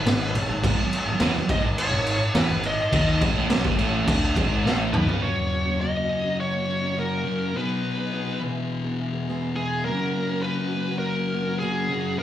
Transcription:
Already playing: B4
0.05 G#1 G#2, snare, crash
0.34 G#1 G#2, crash
0.48 G#1 G#2
0.63 G#1 G#2 G#3, kick, crash
0.77 muted distorted electric guitar stroke, muted picked electric bass stroke
0.93 crash
1.06 muted distorted electric guitar stroke, muted picked electric bass stroke
1.20 E2 E3 E4, snare, crash
1.35 muted picked electric bass stroke, muted distorted electric guitar stroke
1.49 G#1 G#2 G#3 D#5, kick, crash
1.63 G#1 G#2
1.78 C#5, crash
1.92 G#1 G#2
2.06 crash
2.35 E2 E3 E4 B4, snare, crash
2.49 G#1 G#2
2.63 D#5, crash
2.91 D#2 D#3 D#4, kick, crash
3.20 G#1 G#2 G#3, kick, crash
3.34 A1 A2 A3
3.48 B1 B2 B3, snare, crash
3.64 G#1 G#2 G#3, kick
3.78 A1 A2 A3, crash
4.07 D2 D3 D4, kick, crash
4.35 G#1 G#2 G#3, kick, crash
4.64 A1 A2 A3, snare
4.93 D#2 D#3 D#4 B4, mid tom
5.07 C#2 C#3 C#4, floor tom
5.21 F#2 C#3 F#3 A#3 C#4 C#5
5.25 F#4
5.51 F#3 A#3 C#4 F#4
5.65 F#3 A#3 C#4 F#4
5.79 F#2 C#3 F#3 A#3 C#4 F#4 D#5
5.94 F#3 A#3 C#4 F#4
6.09 F#3 A#3 C#4 F#4
6.23 F#3 A#3 C#4 F#4
6.40 C#5
6.52 F#3 A#3 C#4 F#4
6.67 F#3 A#3 C#4 F#4
6.81 F#3 A#3 C#4 F#4
6.95 F#2 C#3 F#3 A#3 C#4 F#4 A#4
7.24 F#2 C#3 F#3 A#3 C#4 F#4
7.53 B2 F#3 B3 D#4 G#4
7.57 B4
7.83 F#3 B3 D#4 G#4
7.97 B3 D#4 G#4
8.11 F#3 B3 D#4 G#4
8.25 B3 D#4 G#4
8.40 E2 B2 E3 G#3 B3 G#4
8.55 E3 G#3 B3 G#4
8.84 E3 G#3 B3 G#4
8.98 E3 G#3 B3 G#4
9.13 E3 G#3 B3 G#4
9.28 E2 B2 E3 G#3 B3 G#4
9.56 E3 G#3 B3 G#4
9.84 F#2 C#3 F#3 A#3 C#4 A#4
9.88 F#4
10.15 F#3 A#3 C#4 F#4
10.29 F#3 A#3 C#4 F#4
10.42 F#2 C#3 F#3 C#4 F#4 B4
10.58 F#3 C#4 F#4
10.73 F#3 A#3 C#4 F#4
10.88 F#3 A#3 C#4 F#4
10.99 A#4
11.16 F#3 A#3 C#4 F#4
11.32 F#3 A#3 C#4 F#4
11.46 F#3 A#3 C#4 F#4
11.60 F#2 C#3 F#3 A#3 C#4 F#4 G#4
11.89 F#2 C#3 F#3 A#3 C#4 F#4
12.18 B2 F#3 B3 A#4

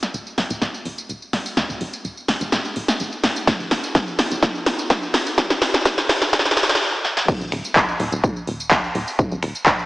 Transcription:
0.03 snare, closed hi-hat, tambourine
0.14 D#1, closed hi-hat, tambourine
0.27 tambourine
0.38 D#1, snare, open hi-hat
0.50 D#1, closed hi-hat, tambourine
0.62 D#1, snare, closed hi-hat, tambourine
0.74 tambourine
0.85 D#1, open hi-hat
0.98 closed hi-hat, tambourine
1.09 D#1, closed hi-hat, tambourine
1.22 tambourine
1.33 D#1, snare, open hi-hat
1.46 open hi-hat, tambourine
1.57 D#1, snare, closed hi-hat, tambourine
1.69 D#1, tambourine
1.81 D#1, open hi-hat
1.93 closed hi-hat, tambourine
2.05 D#1, closed hi-hat, tambourine
2.17 tambourine
2.28 D#1, snare, open hi-hat
2.41 D#1, closed hi-hat, tambourine
2.52 D#1, snare, closed hi-hat, tambourine
2.65 tambourine
2.76 D#1, open hi-hat
2.88 snare, closed hi-hat, tambourine
3.00 D#1, closed hi-hat, tambourine
3.13 tambourine
3.24 D#1, snare, open hi-hat
3.36 closed hi-hat, tambourine
3.47 D#1, kick, snare, closed hi-hat, tambourine
3.60 D#1, tambourine
3.71 D#1, snare, open hi-hat
3.84 closed hi-hat, tambourine
3.95 D#1, kick, snare, closed hi-hat, tambourine
4.08 tambourine
4.19 D#1, snare, open hi-hat
4.31 D#1, closed hi-hat, tambourine
4.43 D#1, kick, snare, closed hi-hat, tambourine
4.55 tambourine
4.66 D#1, snare, open hi-hat
4.79 closed hi-hat, tambourine
4.90 D#1, kick, snare, closed hi-hat, tambourine
5.03 tambourine
5.14 D#1, snare, open hi-hat
5.26 open hi-hat, tambourine
5.38 D#1, kick, snare, closed hi-hat, tambourine
5.50 D#1, snare, tambourine
5.62 D#1, snare, open hi-hat
5.74 snare, closed hi-hat, tambourine
5.85 D#1, kick, snare, closed hi-hat, tambourine
5.98 snare, tambourine
6.09 D#1, snare, open hi-hat
6.22 D#1, snare, tambourine
6.33 D#1, kick, snare, closed hi-hat, tambourine
6.39 snare
6.45 snare, tambourine
6.51 snare
6.57 D#1, snare, open hi-hat
6.63 snare
6.69 snare, closed hi-hat, tambourine
6.75 snare
7.04 snare
7.17 snare
7.28 D#1, kick, closed hi-hat, crash, tambourine
7.41 D#1, tambourine
7.52 D#1, finger snap, open hi-hat
7.65 closed hi-hat, tambourine
7.76 D#1, kick, clap, closed hi-hat, tambourine
7.89 tambourine
8.00 D#1, open hi-hat
8.12 D#1, closed hi-hat, tambourine
8.24 D#1, kick, closed hi-hat, tambourine
8.36 tambourine
8.47 D#1, open hi-hat
8.60 closed hi-hat, tambourine
8.71 D#1, kick, clap, closed hi-hat, tambourine
8.84 tambourine
8.95 D#1, open hi-hat
9.07 open hi-hat, tambourine
9.19 D#1, kick, tambourine
9.31 D#1, tambourine
9.43 D#1, finger snap, open hi-hat
9.55 closed hi-hat, tambourine
9.66 D#1, kick, clap, closed hi-hat, tambourine
9.79 tambourine

